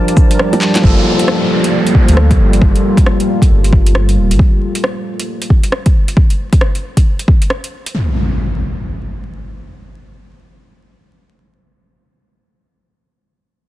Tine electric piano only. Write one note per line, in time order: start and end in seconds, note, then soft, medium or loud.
0.00 0.27 F3 loud
0.00 0.31 D4 medium
0.00 0.35 A#4 loud
0.27 0.80 F3 medium
0.27 0.82 D4 medium
0.35 0.84 A#4 medium
0.82 1.15 F3 medium
0.82 1.16 A#3 medium
0.82 1.17 A4 loud
1.16 2.04 F3 medium
1.20 2.06 A#3 medium
1.24 2.08 A4 medium
2.05 2.58 F3 medium
2.05 2.60 A#3 medium
2.13 2.62 A4 medium